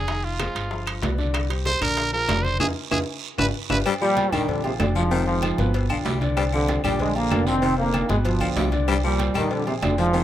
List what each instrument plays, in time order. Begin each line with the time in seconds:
Already playing: upright bass F1, trumpet G#4
0.08 upright piano D#3 D#4 D#5, high bongo, high conga, high timbale, long guiro
0.24 trumpet F4, high conga
0.39 upright piano G#3 G#4 C5, high bongo, high conga, high timbale, low timbale, short guiro, claves
0.55 upright bass G1, high bongo, high conga, high timbale, short guiro
0.71 upright piano F3 F4 F5, high bongo, high conga, long guiro
0.87 high bongo, high conga, high timbale, claves
1.02 upright bass C2, upright piano B3 B4 D5, high bongo, low bongo, high conga, high timbale, low timbale, short guiro
1.18 upright piano D3 D4 D5, high bongo, high conga, short guiro
1.34 high bongo, high conga, high timbale, long guiro, claves
1.50 upright piano G3 G4 C5, high bongo, high conga, high timbale
1.66 trumpet C5, high bongo, high conga, low timbale, short guiro
1.81 upright bass A#1, upright piano D3 D4 D5, trumpet A#4, high conga, low conga, high timbale, short guiro, claves
1.97 high bongo, high conga, high timbale, long guiro
2.13 upright piano F3 F4 G#4, trumpet A#4, high bongo, high conga
2.28 upright bass F1, upright piano D3 D4 D5, high bongo, low bongo, high conga, high timbale, low timbale, short guiro, claves
2.44 trumpet C5, high bongo, high conga, short guiro
2.59 upright piano D#4 F4 G#4, trumpet G#4, low bongo, high conga, high timbale, long guiro, claves
2.91 upright bass F2, upright piano D#4 F4 G#4, trumpet G#4, low bongo, high conga, high timbale, long guiro, claves
3.38 upright bass G1, upright piano D4 F4 G4, trumpet B4, low bongo, high conga, high timbale, long guiro, claves
3.70 upright bass G1, upright piano D4 F4 G4, trumpet B4, low bongo, high conga, high timbale, long guiro, claves
3.86 baritone saxophone G3, cowbell, low agogo, long guiro, claves
4.01 trombone section A#2 G3, baritone saxophone F3, upright piano G3 G4 C5, high conga
4.17 cowbell, high conga, low timbale, low agogo, short guiro
4.32 upright bass A#1, trombone section G2 D#3, upright piano D3 D4 D5, baritone saxophone G3, low conga, low agogo, short guiro, claves
4.48 trombone section F2 D3, cowbell, high conga, low conga, long guiro
4.64 trombone section D#2 C3, upright piano F3 F4 G#4, high conga, low agogo
4.79 upright bass F1, trombone section F2 D3, upright piano D3 D4 D5, cowbell, high conga, low timbale, low agogo, short guiro, claves
4.95 trombone section G#2 F3, baritone saxophone F3, cowbell, short guiro
5.11 upright piano C3 C4 C5, baritone saxophone D#3, cowbell, high conga, low agogo, long guiro
5.27 trombone section G#2 F3, high conga
5.42 upright piano D#3 D#4 F4, cowbell, high conga, low timbale, low agogo, short guiro, claves
5.58 upright bass G1, upright piano B2 B3 B4, cowbell, high conga, short guiro
5.74 cowbell, low agogo, long guiro
5.90 upright bass B1, upright piano D3 D4 F4, baritone saxophone F3, high conga, low agogo, claves
6.05 upright bass C2, upright piano D3 D4 F4, baritone saxophone G3, cowbell, high conga, low timbale, low agogo, short guiro
6.21 upright piano D3 D4 D5, cowbell, high conga, short guiro
6.37 baritone saxophone G3, cowbell, low agogo, long guiro, claves
6.53 trombone section F2 D3, baritone saxophone F3, upright piano G3 G4 C5, high conga
6.68 cowbell, high conga, low timbale, low agogo, short guiro
6.84 upright bass A#1, trombone section A#2 G3, upright piano D3 D4 D5, baritone saxophone G3, low conga, low agogo, short guiro, claves
6.99 trombone section D3 G#3, cowbell, high conga, low conga, long guiro
7.16 trombone section D3 A#3, upright piano F3 F4 G#4, high conga, low agogo
7.31 upright bass F1, upright piano D3 D4 D5, cowbell, high conga, low timbale, low agogo, short guiro, claves
7.47 trombone section D#3 C4, baritone saxophone F3, cowbell, short guiro
7.62 upright piano C3 C4 C5, baritone saxophone D#3, cowbell, high conga, low agogo, long guiro
7.78 trombone section D3 A#3
7.93 upright piano D#3 D#4 F4, cowbell, high conga, low timbale, low agogo, short guiro, claves
8.09 upright bass G1, upright piano B2 B3 B4, trombone section C3 G#3, cowbell, high conga, short guiro
8.25 trombone section B2 F3, cowbell, low agogo, long guiro
8.41 upright bass B1, upright piano D3 D4 F4, baritone saxophone F3, high conga, low agogo, claves
8.56 upright bass C2, upright piano D3 D4 F4, baritone saxophone G3, cowbell, high conga, low timbale, low agogo, short guiro
8.72 upright piano D3 D4 D5, cowbell, high conga, short guiro
8.88 baritone saxophone G3, cowbell, low agogo, long guiro, claves
9.04 trombone section A#2 G3, baritone saxophone F3, upright piano G3 G4 C5
9.19 cowbell, high conga, low timbale, low agogo, short guiro
9.35 upright bass A#1, trombone section G2 D#3, upright piano D3 D4 D5, baritone saxophone G3, low conga, low agogo, short guiro, claves
9.51 trombone section F2 D3, cowbell, high conga, long guiro
9.67 trombone section D#2 C3, upright piano F3 F4 G#4, high conga, low agogo
9.82 upright bass F1, trombone section F2 D3, upright piano D3 D4 D5, cowbell, high conga, low timbale, low agogo, short guiro, claves
9.98 trombone section G#2 F3, baritone saxophone F3, cowbell, short guiro
10.13 upright piano C3 C4 C5, baritone saxophone D#3, cowbell, high conga, low agogo, long guiro